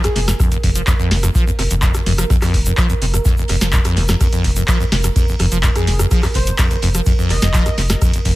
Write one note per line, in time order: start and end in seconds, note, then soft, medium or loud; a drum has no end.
0.00 0.08 F2 loud
0.00 8.36 A#4 medium
0.00 snare soft
0.00 shaker soft
0.04 0.12 G#4 medium
0.04 cross-stick medium
0.04 closed hi-hat medium
0.15 0.34 F1 medium
0.15 0.20 C3 loud
0.15 0.24 G#4 medium
0.15 snare soft
0.15 closed hi-hat medium
0.15 open hi-hat loud
0.28 0.32 F2 medium
0.28 cross-stick medium
0.28 snare medium
0.28 closed hi-hat medium
0.28 shaker medium
0.40 0.49 F2 medium
0.40 kick loud
0.40 cross-stick medium
0.40 closed hi-hat medium
0.40 shaker medium
0.52 0.58 F1 loud
0.52 closed hi-hat medium
0.52 shaker soft
0.63 0.82 F1 loud
0.63 0.70 F2 loud
0.63 kick medium
0.63 closed hi-hat medium
0.63 open hi-hat loud
0.75 0.82 F3 medium
0.75 closed hi-hat medium
0.75 closed hi-hat soft
0.75 shaker medium
0.87 0.94 F2 loud
0.87 kick loud
0.87 cross-stick soft
0.87 snare loud
0.87 clap loud
0.87 closed hi-hat medium
0.87 shaker medium
0.99 1.13 F2 loud
0.99 shaker soft
1.11 1.29 F1 loud
1.11 1.18 D#2 medium
1.11 snare medium
1.11 closed hi-hat medium
1.11 open hi-hat loud
1.23 1.30 F2 loud
1.23 cross-stick medium
1.23 closed hi-hat medium
1.23 closed hi-hat soft
1.23 shaker medium
1.35 1.45 F3 loud
1.35 kick loud
1.35 closed hi-hat medium
1.35 shaker medium
1.47 1.51 F2 loud
1.47 shaker soft
1.59 1.68 F1 medium
1.59 1.63 C3 loud
1.59 cross-stick medium
1.59 closed hi-hat medium
1.59 open hi-hat loud
1.70 1.89 F1 medium
1.70 1.75 F2 medium
1.70 closed hi-hat soft
1.70 closed hi-hat medium
1.70 shaker medium
1.82 1.92 F2 medium
1.82 kick loud
1.82 snare loud
1.82 clap loud
1.82 closed hi-hat medium
1.82 shaker medium
1.94 2.01 F1 loud
1.94 cross-stick medium
1.94 snare soft
1.94 closed hi-hat medium
1.94 shaker soft
2.06 2.24 F1 medium
2.06 2.13 F2 loud
2.06 snare soft
2.06 closed hi-hat medium
2.06 open hi-hat loud
2.18 2.25 F3 medium
2.18 cross-stick medium
2.18 closed hi-hat soft
2.18 closed hi-hat medium
2.18 shaker medium
2.30 2.37 F2 loud
2.30 kick loud
2.30 cross-stick medium
2.30 closed hi-hat medium
2.30 shaker medium
2.42 2.55 F2 loud
2.42 cross-stick medium
2.42 clap soft
2.42 open hi-hat medium
2.42 shaker soft
2.54 2.72 F1 loud
2.54 2.60 D#2 medium
2.54 kick medium
2.54 closed hi-hat medium
2.54 open hi-hat loud
2.66 2.72 F2 loud
2.66 closed hi-hat medium
2.66 shaker medium
2.77 2.88 F3 loud
2.77 kick loud
2.77 cross-stick soft
2.77 snare loud
2.77 clap loud
2.77 closed hi-hat medium
2.77 shaker medium
2.89 2.94 F2 loud
2.89 closed hi-hat soft
2.89 shaker soft
3.01 3.20 F1 loud
3.01 3.05 C3 loud
3.01 closed hi-hat medium
3.01 open hi-hat loud
3.13 3.17 F2 medium
3.13 cross-stick medium
3.13 closed hi-hat soft
3.13 closed hi-hat medium
3.13 shaker medium
3.25 3.35 F2 medium
3.25 kick loud
3.25 snare medium
3.25 closed hi-hat medium
3.25 shaker medium
3.37 3.44 F1 loud
3.37 shaker soft
3.48 3.58 F1 medium
3.48 3.56 F2 loud
3.48 cross-stick soft
3.48 closed hi-hat medium
3.48 open hi-hat loud
3.61 3.79 F1 medium
3.61 3.68 F3 medium
3.61 snare medium
3.61 snare loud
3.61 closed hi-hat medium
3.61 shaker medium
3.72 3.80 F2 loud
3.72 kick loud
3.72 clap loud
3.72 shaker medium
3.84 3.98 F2 loud
3.84 cross-stick medium
3.84 closed hi-hat medium
3.84 shaker soft
3.96 4.15 F1 loud
3.96 4.03 D#2 medium
3.96 snare loud
3.96 snare soft
3.96 closed hi-hat medium
3.96 open hi-hat loud
4.08 4.15 F2 loud
4.08 cross-stick medium
4.08 snare medium
4.08 closed hi-hat medium
4.08 shaker medium
4.20 4.27 F2 loud
4.20 kick loud
4.20 cross-stick medium
4.20 closed hi-hat medium
4.20 ride medium
4.20 shaker medium
4.32 4.46 F2 loud
4.32 closed hi-hat medium
4.32 shaker soft
4.44 4.62 F1 loud
4.44 4.51 D#2 medium
4.44 kick medium
4.44 closed hi-hat medium
4.44 open hi-hat loud
4.56 4.63 F2 loud
4.56 closed hi-hat soft
4.56 closed hi-hat medium
4.56 shaker medium
4.68 4.78 F3 loud
4.68 kick loud
4.68 cross-stick soft
4.68 snare loud
4.68 clap loud
4.68 closed hi-hat medium
4.68 ride medium
4.68 shaker medium
4.80 4.84 F2 loud
4.80 shaker soft
4.92 5.10 F1 loud
4.92 4.96 C3 loud
4.92 snare medium
4.92 closed hi-hat medium
4.92 open hi-hat loud
5.04 5.08 F2 medium
5.04 cross-stick medium
5.04 closed hi-hat medium
5.04 closed hi-hat soft
5.04 shaker medium
5.16 5.26 F2 medium
5.16 kick loud
5.16 closed hi-hat medium
5.16 ride medium
5.16 shaker medium
5.28 5.34 F1 loud
5.28 shaker soft
5.39 5.49 F1 medium
5.39 5.46 F2 loud
5.39 cross-stick medium
5.39 closed hi-hat medium
5.39 open hi-hat loud
5.52 5.70 F1 medium
5.52 5.58 F3 medium
5.52 closed hi-hat medium
5.52 closed hi-hat soft
5.52 shaker medium
5.63 5.70 F2 loud
5.63 kick loud
5.63 snare loud
5.63 clap loud
5.63 closed hi-hat medium
5.63 ride medium
5.63 shaker medium
5.75 5.89 F2 loud
5.75 5.83 G#4 medium
5.75 cross-stick medium
5.75 snare soft
5.75 closed hi-hat medium
5.75 shaker soft
5.87 6.05 F1 medium
5.87 5.94 D#2 medium
5.87 5.95 G#4 medium
5.87 snare soft
5.87 closed hi-hat medium
5.87 open hi-hat loud
5.99 6.06 F2 loud
5.99 cross-stick medium
5.99 closed hi-hat soft
5.99 closed hi-hat medium
5.99 shaker medium
6.11 6.21 F3 loud
6.11 kick loud
6.11 cross-stick medium
6.11 closed hi-hat medium
6.11 ride medium
6.11 shaker medium
6.23 6.27 F2 loud
6.23 cross-stick medium
6.23 clap soft
6.23 open hi-hat medium
6.23 shaker soft
6.34 6.53 F1 loud
6.34 6.39 C3 loud
6.34 6.47 C5 medium
6.34 kick medium
6.34 closed hi-hat medium
6.34 open hi-hat loud
6.46 6.51 F2 medium
6.46 closed hi-hat medium
6.46 shaker medium
6.58 6.69 F2 medium
6.58 kick loud
6.58 cross-stick soft
6.58 snare loud
6.58 clap loud
6.58 closed hi-hat medium
6.58 ride medium
6.58 shaker medium
6.70 6.77 F1 loud
6.70 closed hi-hat soft
6.70 shaker soft
6.82 7.01 F1 loud
6.82 6.89 F2 loud
6.82 closed hi-hat medium
6.82 open hi-hat loud
6.94 7.01 F3 medium
6.94 cross-stick medium
6.94 closed hi-hat soft
6.94 closed hi-hat medium
6.94 shaker medium
7.06 7.13 F2 loud
7.06 kick loud
7.06 closed hi-hat medium
7.06 ride medium
7.06 shaker medium
7.18 7.32 F2 loud
7.18 shaker soft
7.29 7.39 F1 medium
7.29 7.37 D#2 medium
7.29 7.78 D#5 loud
7.29 cross-stick soft
7.29 closed hi-hat medium
7.29 open hi-hat loud
7.42 7.60 F1 medium
7.42 7.49 F2 loud
7.42 snare soft
7.42 snare medium
7.42 closed hi-hat medium
7.42 shaker medium
7.53 7.64 F3 loud
7.53 kick loud
7.53 snare loud
7.53 clap loud
7.53 closed hi-hat medium
7.53 ride medium
7.53 shaker medium
7.66 7.70 F2 loud
7.66 cross-stick medium
7.66 snare soft
7.66 closed hi-hat medium
7.66 shaker soft
7.77 7.96 F1 medium
7.77 7.82 C3 loud
7.77 snare soft
7.77 closed hi-hat medium
7.77 open hi-hat loud
7.90 7.94 F2 medium
7.90 cross-stick medium
7.90 snare medium
7.90 closed hi-hat medium
7.90 shaker medium
8.01 8.11 F2 medium
8.01 kick loud
8.01 cross-stick medium
8.01 closed hi-hat medium
8.01 ride medium
8.01 shaker medium
8.13 8.20 F1 loud
8.13 closed hi-hat medium
8.13 shaker soft
8.25 8.36 F1 loud
8.25 8.32 F2 loud
8.25 kick medium
8.25 closed hi-hat medium
8.25 open hi-hat loud